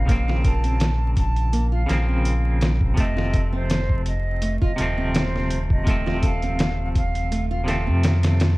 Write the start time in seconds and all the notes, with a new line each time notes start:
Already playing: A#1 F5
0.06 C#3 F3 A#3, kick, closed hi-hat
0.11 C4
0.28 F4, snare
0.44 A#4 A5, kick, closed hi-hat
0.64 C4, closed hi-hat
0.80 snare, closed hi-hat
1.17 A5, kick, closed hi-hat
1.36 closed hi-hat
1.53 A#3, closed hi-hat
1.72 F4 F5
1.86 A#1 C#3 F3 A#3 A#4, closed hi-hat
1.91 C4, snare
2.08 C4
2.25 closed hi-hat
2.61 snare, closed hi-hat
2.81 kick
2.94 F1 C3 F3 A3, kick, closed hi-hat
2.98 A3 C4 D#5
3.17 F4, snare
3.33 A4, kick, closed hi-hat
3.53 C4 C5
3.70 snare, closed hi-hat
3.89 kick
4.06 D#5, closed hi-hat
4.42 A3, closed hi-hat
4.62 F4 D#5, kick
4.76 D#1 C3 F3 A4, closed hi-hat
4.80 A3 C4
4.98 C4
5.14 C5, snare, closed hi-hat
5.36 snare
5.50 closed hi-hat
5.70 D#5, kick
5.84 C3 F3 A3, kick, closed hi-hat
5.90 C4
6.06 F4, snare
6.23 A4 F5, kick, closed hi-hat
6.42 C4, closed hi-hat
6.59 snare, closed hi-hat
6.95 F5, kick, closed hi-hat
7.15 closed hi-hat
7.31 A3, closed hi-hat
7.51 F4 F5
7.64 C3 F3 A3 A4, closed hi-hat
7.69 C4, snare
7.87 F2 C4
8.03 snare, closed hi-hat
8.23 snare, closed hi-hat
8.40 snare, closed hi-hat